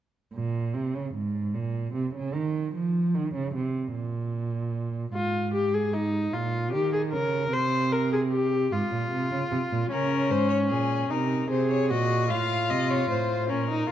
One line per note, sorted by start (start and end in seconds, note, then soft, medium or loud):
0.34 0.76 A#2 medium
0.74 0.96 C3 medium
0.94 1.14 C#3 medium
1.15 1.56 G#2 medium
1.54 1.94 A#2 medium
1.95 2.14 C3 medium
2.15 2.36 C#3 medium
2.35 2.75 D#3 medium
2.75 3.16 F3 medium
3.15 3.34 D#3 medium
3.35 3.54 C#3 medium
3.55 3.94 C3 medium
3.95 5.12 A#2 medium
5.14 6.31 G#2 medium
5.14 5.51 F4 medium
5.54 5.75 G4 medium
5.74 5.95 G#4 medium
5.94 6.35 D#4 medium
6.33 6.75 A#2 medium
6.33 6.72 F4 medium
6.73 7.14 D#3 medium
6.73 6.93 G4 medium
6.93 7.01 G#4 medium
7.13 7.52 C#3 medium
7.13 7.54 A#4 medium
7.53 8.70 C3 medium
7.53 7.94 C5 medium
7.92 8.12 A#4 medium
8.13 8.21 G#4 medium
8.32 8.74 G4 medium
8.72 8.80 G#2 medium
8.72 9.91 F4 medium
8.92 9.11 A#2 medium
9.12 9.31 C3 medium
9.32 9.40 C#3 medium
9.52 9.60 C3 medium
9.72 9.91 A#2 medium
9.91 10.32 C#3 medium
9.91 11.12 C#4 medium
9.91 10.32 A#4 medium
10.31 10.72 G#2 medium
10.31 10.49 C5 medium
10.50 10.58 C#5 medium
10.70 11.10 A#2 medium
10.70 11.09 G#4 medium
11.10 11.50 C3 medium
11.10 11.50 D#4 medium
11.10 11.50 A#4 medium
11.50 11.92 C3 medium
11.50 11.92 G#4 medium
11.50 11.70 C5 medium
11.71 11.90 C#5 medium
11.90 12.32 A#2 medium
11.90 12.30 F#4 medium
11.90 12.32 D#5 medium
12.30 12.72 A2 medium
12.30 13.48 F4 medium
12.30 12.72 F5 medium
12.70 13.10 C3 medium
12.70 12.92 D#5 medium
12.90 13.09 C#5 medium
13.10 13.52 A2 medium
13.10 13.51 C5 medium
13.50 13.90 A#2 medium
13.50 13.70 C#4 medium
13.50 13.92 A#4 medium
13.70 13.90 D#4 medium